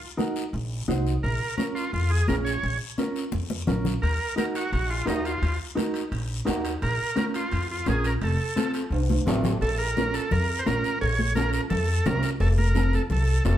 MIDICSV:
0, 0, Header, 1, 5, 480
1, 0, Start_track
1, 0, Key_signature, -5, "minor"
1, 0, Tempo, 349243
1, 1695, Time_signature, 4, 2, 24, 8
1, 13216, Key_signature, -5, "minor"
1, 18659, End_track
2, 0, Start_track
2, 0, Title_t, "Transistor combo organ"
2, 0, Program_c, 0, 18
2, 1692, Note_on_c, 0, 70, 81
2, 2140, Note_off_c, 0, 70, 0
2, 2160, Note_on_c, 0, 70, 81
2, 2271, Note_off_c, 0, 70, 0
2, 2405, Note_on_c, 0, 65, 70
2, 2633, Note_off_c, 0, 65, 0
2, 2661, Note_on_c, 0, 65, 79
2, 2891, Note_on_c, 0, 68, 80
2, 2905, Note_off_c, 0, 65, 0
2, 3116, Note_off_c, 0, 68, 0
2, 3134, Note_on_c, 0, 70, 94
2, 3243, Note_off_c, 0, 70, 0
2, 3361, Note_on_c, 0, 73, 90
2, 3815, Note_off_c, 0, 73, 0
2, 5525, Note_on_c, 0, 70, 94
2, 5977, Note_off_c, 0, 70, 0
2, 6015, Note_on_c, 0, 70, 89
2, 6123, Note_off_c, 0, 70, 0
2, 6265, Note_on_c, 0, 66, 82
2, 6483, Note_off_c, 0, 66, 0
2, 6499, Note_on_c, 0, 66, 81
2, 6734, Note_on_c, 0, 65, 78
2, 6745, Note_off_c, 0, 66, 0
2, 6959, Note_off_c, 0, 65, 0
2, 6983, Note_on_c, 0, 63, 75
2, 7204, Note_off_c, 0, 63, 0
2, 7230, Note_on_c, 0, 65, 71
2, 7671, Note_off_c, 0, 65, 0
2, 9383, Note_on_c, 0, 70, 102
2, 9846, Note_off_c, 0, 70, 0
2, 9862, Note_on_c, 0, 70, 94
2, 9969, Note_off_c, 0, 70, 0
2, 10107, Note_on_c, 0, 65, 78
2, 10549, Note_off_c, 0, 65, 0
2, 10602, Note_on_c, 0, 65, 74
2, 10814, Note_off_c, 0, 65, 0
2, 10847, Note_on_c, 0, 68, 86
2, 11079, Note_off_c, 0, 68, 0
2, 11081, Note_on_c, 0, 70, 85
2, 11184, Note_off_c, 0, 70, 0
2, 11321, Note_on_c, 0, 69, 81
2, 11979, Note_off_c, 0, 69, 0
2, 13214, Note_on_c, 0, 69, 95
2, 13438, Note_off_c, 0, 69, 0
2, 13446, Note_on_c, 0, 70, 95
2, 13937, Note_on_c, 0, 69, 87
2, 13945, Note_off_c, 0, 70, 0
2, 14182, Note_on_c, 0, 70, 99
2, 14183, Note_off_c, 0, 69, 0
2, 14554, Note_on_c, 0, 72, 64
2, 14574, Note_off_c, 0, 70, 0
2, 14653, Note_off_c, 0, 72, 0
2, 14655, Note_on_c, 0, 70, 98
2, 15101, Note_off_c, 0, 70, 0
2, 15134, Note_on_c, 0, 73, 105
2, 15580, Note_off_c, 0, 73, 0
2, 15605, Note_on_c, 0, 70, 101
2, 15832, Note_off_c, 0, 70, 0
2, 15854, Note_on_c, 0, 70, 95
2, 15961, Note_off_c, 0, 70, 0
2, 16078, Note_on_c, 0, 69, 92
2, 16576, Note_on_c, 0, 70, 106
2, 16579, Note_off_c, 0, 69, 0
2, 16908, Note_off_c, 0, 70, 0
2, 17056, Note_on_c, 0, 69, 96
2, 17162, Note_off_c, 0, 69, 0
2, 17291, Note_on_c, 0, 70, 96
2, 17785, Note_off_c, 0, 70, 0
2, 17796, Note_on_c, 0, 69, 87
2, 17898, Note_off_c, 0, 69, 0
2, 18034, Note_on_c, 0, 69, 90
2, 18468, Note_off_c, 0, 69, 0
2, 18505, Note_on_c, 0, 69, 95
2, 18659, Note_off_c, 0, 69, 0
2, 18659, End_track
3, 0, Start_track
3, 0, Title_t, "Clean electric guitar"
3, 0, Program_c, 1, 27
3, 240, Note_on_c, 1, 63, 82
3, 247, Note_on_c, 1, 70, 83
3, 248, Note_on_c, 1, 66, 73
3, 583, Note_off_c, 1, 63, 0
3, 585, Note_off_c, 1, 70, 0
3, 587, Note_off_c, 1, 66, 0
3, 1210, Note_on_c, 1, 63, 84
3, 1216, Note_on_c, 1, 66, 79
3, 1226, Note_on_c, 1, 72, 94
3, 1549, Note_off_c, 1, 63, 0
3, 1550, Note_off_c, 1, 66, 0
3, 1557, Note_off_c, 1, 72, 0
3, 2170, Note_on_c, 1, 61, 67
3, 2179, Note_on_c, 1, 65, 59
3, 2188, Note_on_c, 1, 70, 73
3, 2509, Note_off_c, 1, 61, 0
3, 2514, Note_off_c, 1, 65, 0
3, 2516, Note_off_c, 1, 70, 0
3, 3146, Note_on_c, 1, 61, 73
3, 3152, Note_on_c, 1, 65, 67
3, 3160, Note_on_c, 1, 68, 76
3, 3477, Note_off_c, 1, 61, 0
3, 3480, Note_off_c, 1, 65, 0
3, 3482, Note_off_c, 1, 68, 0
3, 4094, Note_on_c, 1, 61, 76
3, 4107, Note_on_c, 1, 65, 70
3, 4110, Note_on_c, 1, 70, 86
3, 4433, Note_off_c, 1, 61, 0
3, 4435, Note_off_c, 1, 65, 0
3, 4439, Note_off_c, 1, 70, 0
3, 5046, Note_on_c, 1, 61, 83
3, 5052, Note_on_c, 1, 65, 75
3, 5060, Note_on_c, 1, 70, 87
3, 5388, Note_off_c, 1, 61, 0
3, 5389, Note_off_c, 1, 65, 0
3, 5394, Note_off_c, 1, 70, 0
3, 5993, Note_on_c, 1, 63, 65
3, 6005, Note_on_c, 1, 66, 58
3, 6011, Note_on_c, 1, 70, 67
3, 6341, Note_off_c, 1, 63, 0
3, 6347, Note_off_c, 1, 66, 0
3, 6349, Note_off_c, 1, 70, 0
3, 6949, Note_on_c, 1, 63, 69
3, 6960, Note_on_c, 1, 70, 76
3, 6961, Note_on_c, 1, 66, 65
3, 7299, Note_off_c, 1, 63, 0
3, 7304, Note_off_c, 1, 70, 0
3, 7305, Note_off_c, 1, 66, 0
3, 7908, Note_on_c, 1, 63, 78
3, 7913, Note_on_c, 1, 66, 72
3, 7922, Note_on_c, 1, 70, 88
3, 8259, Note_off_c, 1, 63, 0
3, 8260, Note_off_c, 1, 66, 0
3, 8266, Note_off_c, 1, 70, 0
3, 8870, Note_on_c, 1, 63, 92
3, 8877, Note_on_c, 1, 66, 74
3, 8879, Note_on_c, 1, 70, 93
3, 9220, Note_off_c, 1, 63, 0
3, 9222, Note_off_c, 1, 66, 0
3, 9224, Note_off_c, 1, 70, 0
3, 9836, Note_on_c, 1, 61, 64
3, 9842, Note_on_c, 1, 65, 62
3, 9848, Note_on_c, 1, 70, 76
3, 10183, Note_off_c, 1, 61, 0
3, 10185, Note_off_c, 1, 65, 0
3, 10189, Note_off_c, 1, 70, 0
3, 10810, Note_on_c, 1, 61, 70
3, 10819, Note_on_c, 1, 65, 68
3, 10826, Note_on_c, 1, 70, 78
3, 11151, Note_off_c, 1, 61, 0
3, 11153, Note_off_c, 1, 65, 0
3, 11158, Note_off_c, 1, 70, 0
3, 11767, Note_on_c, 1, 60, 65
3, 11778, Note_on_c, 1, 65, 63
3, 11780, Note_on_c, 1, 69, 75
3, 12109, Note_off_c, 1, 60, 0
3, 12111, Note_off_c, 1, 65, 0
3, 12115, Note_off_c, 1, 69, 0
3, 12738, Note_on_c, 1, 60, 85
3, 12748, Note_on_c, 1, 65, 76
3, 12749, Note_on_c, 1, 69, 90
3, 13075, Note_off_c, 1, 60, 0
3, 13076, Note_off_c, 1, 65, 0
3, 13079, Note_off_c, 1, 69, 0
3, 13708, Note_on_c, 1, 61, 63
3, 13715, Note_on_c, 1, 65, 62
3, 13720, Note_on_c, 1, 70, 81
3, 14039, Note_off_c, 1, 61, 0
3, 14039, Note_off_c, 1, 65, 0
3, 14043, Note_off_c, 1, 70, 0
3, 14655, Note_on_c, 1, 61, 71
3, 14659, Note_on_c, 1, 65, 67
3, 14669, Note_on_c, 1, 70, 82
3, 14991, Note_off_c, 1, 61, 0
3, 14994, Note_off_c, 1, 65, 0
3, 14996, Note_off_c, 1, 70, 0
3, 15621, Note_on_c, 1, 61, 71
3, 15630, Note_on_c, 1, 65, 62
3, 15637, Note_on_c, 1, 69, 72
3, 15954, Note_off_c, 1, 61, 0
3, 15956, Note_off_c, 1, 65, 0
3, 15961, Note_off_c, 1, 69, 0
3, 16574, Note_on_c, 1, 61, 77
3, 16576, Note_on_c, 1, 65, 66
3, 16585, Note_on_c, 1, 70, 87
3, 16908, Note_off_c, 1, 65, 0
3, 16909, Note_off_c, 1, 61, 0
3, 16914, Note_off_c, 1, 70, 0
3, 17529, Note_on_c, 1, 60, 68
3, 17536, Note_on_c, 1, 65, 60
3, 17546, Note_on_c, 1, 69, 75
3, 17866, Note_off_c, 1, 60, 0
3, 17868, Note_off_c, 1, 65, 0
3, 17874, Note_off_c, 1, 69, 0
3, 18484, Note_on_c, 1, 60, 75
3, 18496, Note_on_c, 1, 65, 73
3, 18502, Note_on_c, 1, 72, 83
3, 18659, Note_off_c, 1, 60, 0
3, 18659, Note_off_c, 1, 65, 0
3, 18659, Note_off_c, 1, 72, 0
3, 18659, End_track
4, 0, Start_track
4, 0, Title_t, "Upright bass"
4, 0, Program_c, 2, 32
4, 730, Note_on_c, 2, 34, 90
4, 1116, Note_off_c, 2, 34, 0
4, 1212, Note_on_c, 2, 36, 88
4, 1597, Note_off_c, 2, 36, 0
4, 1702, Note_on_c, 2, 34, 92
4, 1891, Note_off_c, 2, 34, 0
4, 2653, Note_on_c, 2, 41, 93
4, 3038, Note_off_c, 2, 41, 0
4, 3136, Note_on_c, 2, 34, 86
4, 3520, Note_off_c, 2, 34, 0
4, 3618, Note_on_c, 2, 34, 91
4, 3809, Note_off_c, 2, 34, 0
4, 4584, Note_on_c, 2, 41, 83
4, 4965, Note_off_c, 2, 41, 0
4, 5057, Note_on_c, 2, 34, 87
4, 5441, Note_off_c, 2, 34, 0
4, 5536, Note_on_c, 2, 39, 82
4, 5728, Note_off_c, 2, 39, 0
4, 6493, Note_on_c, 2, 34, 89
4, 6878, Note_off_c, 2, 34, 0
4, 6973, Note_on_c, 2, 39, 84
4, 7359, Note_off_c, 2, 39, 0
4, 7447, Note_on_c, 2, 39, 89
4, 7643, Note_off_c, 2, 39, 0
4, 8407, Note_on_c, 2, 34, 85
4, 8795, Note_off_c, 2, 34, 0
4, 8896, Note_on_c, 2, 39, 83
4, 9281, Note_off_c, 2, 39, 0
4, 9374, Note_on_c, 2, 34, 94
4, 9567, Note_off_c, 2, 34, 0
4, 10338, Note_on_c, 2, 41, 87
4, 10722, Note_off_c, 2, 41, 0
4, 10823, Note_on_c, 2, 34, 85
4, 11205, Note_off_c, 2, 34, 0
4, 11290, Note_on_c, 2, 29, 89
4, 11485, Note_off_c, 2, 29, 0
4, 12238, Note_on_c, 2, 36, 87
4, 12630, Note_off_c, 2, 36, 0
4, 12723, Note_on_c, 2, 33, 85
4, 13112, Note_off_c, 2, 33, 0
4, 13206, Note_on_c, 2, 34, 89
4, 13978, Note_off_c, 2, 34, 0
4, 14181, Note_on_c, 2, 41, 92
4, 14562, Note_off_c, 2, 41, 0
4, 14662, Note_on_c, 2, 34, 99
4, 14851, Note_off_c, 2, 34, 0
4, 15145, Note_on_c, 2, 34, 91
4, 15908, Note_off_c, 2, 34, 0
4, 16092, Note_on_c, 2, 41, 97
4, 16476, Note_off_c, 2, 41, 0
4, 16576, Note_on_c, 2, 36, 107
4, 16766, Note_off_c, 2, 36, 0
4, 17043, Note_on_c, 2, 29, 98
4, 17813, Note_off_c, 2, 29, 0
4, 18002, Note_on_c, 2, 36, 90
4, 18389, Note_off_c, 2, 36, 0
4, 18493, Note_on_c, 2, 29, 105
4, 18659, Note_off_c, 2, 29, 0
4, 18659, End_track
5, 0, Start_track
5, 0, Title_t, "Drums"
5, 258, Note_on_c, 9, 63, 77
5, 265, Note_on_c, 9, 73, 63
5, 395, Note_off_c, 9, 63, 0
5, 403, Note_off_c, 9, 73, 0
5, 493, Note_on_c, 9, 73, 66
5, 631, Note_off_c, 9, 73, 0
5, 740, Note_on_c, 9, 63, 28
5, 741, Note_on_c, 9, 74, 66
5, 877, Note_off_c, 9, 63, 0
5, 878, Note_off_c, 9, 74, 0
5, 1210, Note_on_c, 9, 63, 70
5, 1237, Note_on_c, 9, 73, 64
5, 1347, Note_off_c, 9, 63, 0
5, 1374, Note_off_c, 9, 73, 0
5, 1466, Note_on_c, 9, 73, 66
5, 1603, Note_off_c, 9, 73, 0
5, 1703, Note_on_c, 9, 63, 33
5, 1709, Note_on_c, 9, 74, 67
5, 1841, Note_off_c, 9, 63, 0
5, 1846, Note_off_c, 9, 74, 0
5, 2168, Note_on_c, 9, 63, 75
5, 2191, Note_on_c, 9, 73, 66
5, 2305, Note_off_c, 9, 63, 0
5, 2328, Note_off_c, 9, 73, 0
5, 2425, Note_on_c, 9, 73, 60
5, 2562, Note_off_c, 9, 73, 0
5, 2660, Note_on_c, 9, 63, 30
5, 2665, Note_on_c, 9, 74, 63
5, 2798, Note_off_c, 9, 63, 0
5, 2803, Note_off_c, 9, 74, 0
5, 3130, Note_on_c, 9, 63, 71
5, 3146, Note_on_c, 9, 73, 68
5, 3268, Note_off_c, 9, 63, 0
5, 3283, Note_off_c, 9, 73, 0
5, 3387, Note_on_c, 9, 73, 66
5, 3525, Note_off_c, 9, 73, 0
5, 3619, Note_on_c, 9, 63, 31
5, 3622, Note_on_c, 9, 74, 67
5, 3757, Note_off_c, 9, 63, 0
5, 3760, Note_off_c, 9, 74, 0
5, 4094, Note_on_c, 9, 63, 74
5, 4098, Note_on_c, 9, 73, 68
5, 4232, Note_off_c, 9, 63, 0
5, 4235, Note_off_c, 9, 73, 0
5, 4340, Note_on_c, 9, 73, 63
5, 4478, Note_off_c, 9, 73, 0
5, 4564, Note_on_c, 9, 63, 85
5, 4584, Note_on_c, 9, 74, 63
5, 4701, Note_off_c, 9, 63, 0
5, 4721, Note_off_c, 9, 74, 0
5, 4811, Note_on_c, 9, 63, 81
5, 4948, Note_off_c, 9, 63, 0
5, 5047, Note_on_c, 9, 64, 83
5, 5060, Note_on_c, 9, 73, 65
5, 5185, Note_off_c, 9, 64, 0
5, 5197, Note_off_c, 9, 73, 0
5, 5289, Note_on_c, 9, 64, 80
5, 5307, Note_on_c, 9, 73, 64
5, 5427, Note_off_c, 9, 64, 0
5, 5444, Note_off_c, 9, 73, 0
5, 5541, Note_on_c, 9, 63, 31
5, 5541, Note_on_c, 9, 74, 67
5, 5547, Note_on_c, 9, 65, 63
5, 5678, Note_off_c, 9, 63, 0
5, 5679, Note_off_c, 9, 74, 0
5, 5684, Note_off_c, 9, 65, 0
5, 6016, Note_on_c, 9, 73, 67
5, 6020, Note_on_c, 9, 63, 77
5, 6025, Note_on_c, 9, 65, 62
5, 6153, Note_off_c, 9, 73, 0
5, 6158, Note_off_c, 9, 63, 0
5, 6162, Note_off_c, 9, 65, 0
5, 6256, Note_on_c, 9, 65, 61
5, 6257, Note_on_c, 9, 73, 65
5, 6394, Note_off_c, 9, 65, 0
5, 6395, Note_off_c, 9, 73, 0
5, 6494, Note_on_c, 9, 63, 29
5, 6499, Note_on_c, 9, 74, 59
5, 6503, Note_on_c, 9, 65, 58
5, 6632, Note_off_c, 9, 63, 0
5, 6636, Note_off_c, 9, 74, 0
5, 6641, Note_off_c, 9, 65, 0
5, 6971, Note_on_c, 9, 65, 61
5, 6971, Note_on_c, 9, 66, 66
5, 6974, Note_on_c, 9, 63, 65
5, 6984, Note_on_c, 9, 73, 71
5, 7109, Note_off_c, 9, 65, 0
5, 7109, Note_off_c, 9, 66, 0
5, 7112, Note_off_c, 9, 63, 0
5, 7122, Note_off_c, 9, 73, 0
5, 7218, Note_on_c, 9, 65, 62
5, 7224, Note_on_c, 9, 73, 66
5, 7355, Note_off_c, 9, 65, 0
5, 7361, Note_off_c, 9, 73, 0
5, 7458, Note_on_c, 9, 65, 67
5, 7463, Note_on_c, 9, 63, 32
5, 7463, Note_on_c, 9, 74, 63
5, 7596, Note_off_c, 9, 65, 0
5, 7600, Note_off_c, 9, 63, 0
5, 7600, Note_off_c, 9, 74, 0
5, 7934, Note_on_c, 9, 65, 64
5, 7939, Note_on_c, 9, 63, 78
5, 7953, Note_on_c, 9, 73, 67
5, 8072, Note_off_c, 9, 65, 0
5, 8076, Note_off_c, 9, 63, 0
5, 8090, Note_off_c, 9, 73, 0
5, 8162, Note_on_c, 9, 65, 57
5, 8182, Note_on_c, 9, 73, 64
5, 8300, Note_off_c, 9, 65, 0
5, 8319, Note_off_c, 9, 73, 0
5, 8411, Note_on_c, 9, 65, 62
5, 8413, Note_on_c, 9, 63, 30
5, 8421, Note_on_c, 9, 74, 59
5, 8548, Note_off_c, 9, 65, 0
5, 8551, Note_off_c, 9, 63, 0
5, 8559, Note_off_c, 9, 74, 0
5, 8888, Note_on_c, 9, 65, 65
5, 8888, Note_on_c, 9, 66, 63
5, 8894, Note_on_c, 9, 63, 66
5, 8897, Note_on_c, 9, 73, 70
5, 9025, Note_off_c, 9, 65, 0
5, 9025, Note_off_c, 9, 66, 0
5, 9031, Note_off_c, 9, 63, 0
5, 9034, Note_off_c, 9, 73, 0
5, 9135, Note_on_c, 9, 65, 67
5, 9137, Note_on_c, 9, 73, 67
5, 9272, Note_off_c, 9, 65, 0
5, 9274, Note_off_c, 9, 73, 0
5, 9373, Note_on_c, 9, 63, 30
5, 9376, Note_on_c, 9, 65, 67
5, 9384, Note_on_c, 9, 74, 67
5, 9510, Note_off_c, 9, 63, 0
5, 9514, Note_off_c, 9, 65, 0
5, 9522, Note_off_c, 9, 74, 0
5, 9850, Note_on_c, 9, 73, 71
5, 9854, Note_on_c, 9, 65, 64
5, 9858, Note_on_c, 9, 63, 74
5, 9987, Note_off_c, 9, 73, 0
5, 9991, Note_off_c, 9, 65, 0
5, 9996, Note_off_c, 9, 63, 0
5, 10092, Note_on_c, 9, 65, 62
5, 10095, Note_on_c, 9, 73, 66
5, 10229, Note_off_c, 9, 65, 0
5, 10232, Note_off_c, 9, 73, 0
5, 10329, Note_on_c, 9, 63, 31
5, 10330, Note_on_c, 9, 74, 61
5, 10341, Note_on_c, 9, 65, 63
5, 10466, Note_off_c, 9, 63, 0
5, 10467, Note_off_c, 9, 74, 0
5, 10478, Note_off_c, 9, 65, 0
5, 10807, Note_on_c, 9, 73, 64
5, 10808, Note_on_c, 9, 63, 72
5, 10812, Note_on_c, 9, 65, 58
5, 10945, Note_off_c, 9, 73, 0
5, 10946, Note_off_c, 9, 63, 0
5, 10950, Note_off_c, 9, 65, 0
5, 11054, Note_on_c, 9, 73, 66
5, 11056, Note_on_c, 9, 65, 61
5, 11191, Note_off_c, 9, 73, 0
5, 11193, Note_off_c, 9, 65, 0
5, 11290, Note_on_c, 9, 74, 66
5, 11292, Note_on_c, 9, 65, 64
5, 11297, Note_on_c, 9, 63, 33
5, 11427, Note_off_c, 9, 74, 0
5, 11429, Note_off_c, 9, 65, 0
5, 11435, Note_off_c, 9, 63, 0
5, 11777, Note_on_c, 9, 73, 70
5, 11783, Note_on_c, 9, 63, 76
5, 11783, Note_on_c, 9, 65, 62
5, 11914, Note_off_c, 9, 73, 0
5, 11920, Note_off_c, 9, 63, 0
5, 11921, Note_off_c, 9, 65, 0
5, 12008, Note_on_c, 9, 73, 63
5, 12022, Note_on_c, 9, 65, 60
5, 12145, Note_off_c, 9, 73, 0
5, 12159, Note_off_c, 9, 65, 0
5, 12262, Note_on_c, 9, 63, 28
5, 12264, Note_on_c, 9, 65, 78
5, 12264, Note_on_c, 9, 74, 65
5, 12400, Note_off_c, 9, 63, 0
5, 12401, Note_off_c, 9, 65, 0
5, 12402, Note_off_c, 9, 74, 0
5, 12503, Note_on_c, 9, 63, 83
5, 12508, Note_on_c, 9, 65, 68
5, 12641, Note_off_c, 9, 63, 0
5, 12646, Note_off_c, 9, 65, 0
5, 12738, Note_on_c, 9, 64, 81
5, 12750, Note_on_c, 9, 66, 87
5, 12752, Note_on_c, 9, 73, 69
5, 12876, Note_off_c, 9, 64, 0
5, 12887, Note_off_c, 9, 66, 0
5, 12889, Note_off_c, 9, 73, 0
5, 12973, Note_on_c, 9, 64, 77
5, 12985, Note_on_c, 9, 66, 69
5, 12985, Note_on_c, 9, 73, 66
5, 13110, Note_off_c, 9, 64, 0
5, 13122, Note_off_c, 9, 73, 0
5, 13123, Note_off_c, 9, 66, 0
5, 13226, Note_on_c, 9, 56, 100
5, 13226, Note_on_c, 9, 74, 70
5, 13363, Note_off_c, 9, 74, 0
5, 13364, Note_off_c, 9, 56, 0
5, 13702, Note_on_c, 9, 63, 75
5, 13704, Note_on_c, 9, 73, 68
5, 13840, Note_off_c, 9, 63, 0
5, 13842, Note_off_c, 9, 73, 0
5, 13938, Note_on_c, 9, 73, 67
5, 14075, Note_off_c, 9, 73, 0
5, 14171, Note_on_c, 9, 64, 79
5, 14181, Note_on_c, 9, 74, 71
5, 14188, Note_on_c, 9, 56, 79
5, 14308, Note_off_c, 9, 64, 0
5, 14318, Note_off_c, 9, 74, 0
5, 14325, Note_off_c, 9, 56, 0
5, 14657, Note_on_c, 9, 63, 76
5, 14663, Note_on_c, 9, 73, 66
5, 14794, Note_off_c, 9, 63, 0
5, 14800, Note_off_c, 9, 73, 0
5, 14904, Note_on_c, 9, 73, 69
5, 15041, Note_off_c, 9, 73, 0
5, 15137, Note_on_c, 9, 56, 100
5, 15139, Note_on_c, 9, 74, 72
5, 15275, Note_off_c, 9, 56, 0
5, 15276, Note_off_c, 9, 74, 0
5, 15377, Note_on_c, 9, 63, 72
5, 15514, Note_off_c, 9, 63, 0
5, 15604, Note_on_c, 9, 63, 80
5, 15616, Note_on_c, 9, 73, 74
5, 15741, Note_off_c, 9, 63, 0
5, 15753, Note_off_c, 9, 73, 0
5, 15845, Note_on_c, 9, 73, 68
5, 15982, Note_off_c, 9, 73, 0
5, 16084, Note_on_c, 9, 74, 69
5, 16091, Note_on_c, 9, 64, 78
5, 16102, Note_on_c, 9, 56, 79
5, 16222, Note_off_c, 9, 74, 0
5, 16228, Note_off_c, 9, 64, 0
5, 16240, Note_off_c, 9, 56, 0
5, 16572, Note_on_c, 9, 73, 75
5, 16579, Note_on_c, 9, 63, 81
5, 16579, Note_on_c, 9, 64, 62
5, 16579, Note_on_c, 9, 66, 69
5, 16709, Note_off_c, 9, 73, 0
5, 16716, Note_off_c, 9, 63, 0
5, 16716, Note_off_c, 9, 64, 0
5, 16716, Note_off_c, 9, 66, 0
5, 16806, Note_on_c, 9, 73, 74
5, 16943, Note_off_c, 9, 73, 0
5, 17045, Note_on_c, 9, 74, 65
5, 17049, Note_on_c, 9, 56, 108
5, 17182, Note_off_c, 9, 74, 0
5, 17186, Note_off_c, 9, 56, 0
5, 17294, Note_on_c, 9, 63, 71
5, 17432, Note_off_c, 9, 63, 0
5, 17522, Note_on_c, 9, 63, 76
5, 17531, Note_on_c, 9, 73, 74
5, 17659, Note_off_c, 9, 63, 0
5, 17669, Note_off_c, 9, 73, 0
5, 17776, Note_on_c, 9, 73, 66
5, 17913, Note_off_c, 9, 73, 0
5, 18003, Note_on_c, 9, 74, 68
5, 18005, Note_on_c, 9, 56, 72
5, 18014, Note_on_c, 9, 64, 72
5, 18140, Note_off_c, 9, 74, 0
5, 18142, Note_off_c, 9, 56, 0
5, 18152, Note_off_c, 9, 64, 0
5, 18484, Note_on_c, 9, 66, 71
5, 18485, Note_on_c, 9, 73, 72
5, 18498, Note_on_c, 9, 63, 74
5, 18622, Note_off_c, 9, 66, 0
5, 18622, Note_off_c, 9, 73, 0
5, 18636, Note_off_c, 9, 63, 0
5, 18659, End_track
0, 0, End_of_file